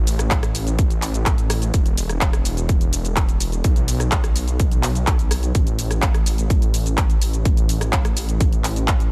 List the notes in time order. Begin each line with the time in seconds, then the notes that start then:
Already playing: A1
0.07 open hi-hat, shaker
0.19 cross-stick, closed hi-hat, shaker
0.31 kick, clap, closed hi-hat, shaker
0.43 cross-stick, closed hi-hat, shaker
0.55 open hi-hat, shaker
0.67 closed hi-hat, shaker
0.79 kick, closed hi-hat, shaker
0.90 closed hi-hat, shaker
1.02 clap, open hi-hat, shaker
1.14 closed hi-hat, shaker
1.26 kick, clap, closed hi-hat, shaker
1.38 closed hi-hat, shaker
1.50 cross-stick, open hi-hat, shaker
1.62 closed hi-hat, shaker
1.74 E1, kick, closed hi-hat, shaker
1.86 closed hi-hat, shaker
1.98 open hi-hat, shaker
2.09 cross-stick, closed hi-hat, shaker
2.21 kick, clap, closed hi-hat, shaker
2.33 cross-stick, closed hi-hat, shaker
2.45 open hi-hat, shaker
2.57 closed hi-hat, shaker
2.69 kick, closed hi-hat, shaker
2.81 closed hi-hat, shaker
2.93 open hi-hat, shaker
3.05 closed hi-hat, shaker
3.16 kick, clap, closed hi-hat, shaker
3.29 closed hi-hat, shaker
3.40 open hi-hat, shaker
3.52 closed hi-hat, shaker
3.64 B1, kick, closed hi-hat, shaker
3.76 closed hi-hat, shaker
3.88 open hi-hat, shaker
4.00 cross-stick, closed hi-hat, shaker
4.12 kick, clap, closed hi-hat, shaker
4.24 cross-stick, closed hi-hat, shaker
4.36 open hi-hat, shaker
4.48 closed hi-hat, shaker
4.60 kick, closed hi-hat, shaker
4.71 closed hi-hat, shaker
4.83 clap, open hi-hat, shaker
4.95 closed hi-hat, shaker
5.07 kick, clap, closed hi-hat, shaker
5.19 closed hi-hat, shaker
5.31 cross-stick, open hi-hat, shaker
5.43 closed hi-hat, shaker
5.55 A1, kick, closed hi-hat, shaker
5.67 closed hi-hat, shaker
5.79 open hi-hat, shaker
5.91 cross-stick, closed hi-hat, shaker
6.02 kick, clap, closed hi-hat, shaker
6.14 cross-stick, closed hi-hat, shaker
6.26 open hi-hat, shaker
6.38 closed hi-hat, shaker
6.50 kick, closed hi-hat, shaker
6.62 closed hi-hat, shaker
6.74 open hi-hat, shaker
6.86 closed hi-hat, shaker
6.98 kick, clap, closed hi-hat, shaker
7.10 closed hi-hat, shaker
7.22 open hi-hat, shaker
7.33 closed hi-hat, shaker
7.45 kick, closed hi-hat, shaker
7.57 closed hi-hat, shaker
7.69 open hi-hat, shaker
7.81 cross-stick, closed hi-hat, shaker
7.93 kick, clap, closed hi-hat, shaker
8.05 cross-stick, closed hi-hat, shaker
8.17 open hi-hat, shaker
8.29 closed hi-hat, shaker
8.40 kick, closed hi-hat, shaker
8.53 closed hi-hat, shaker
8.64 clap, open hi-hat, shaker
8.76 closed hi-hat, shaker
8.88 kick, clap, closed hi-hat, shaker
9.00 closed hi-hat, shaker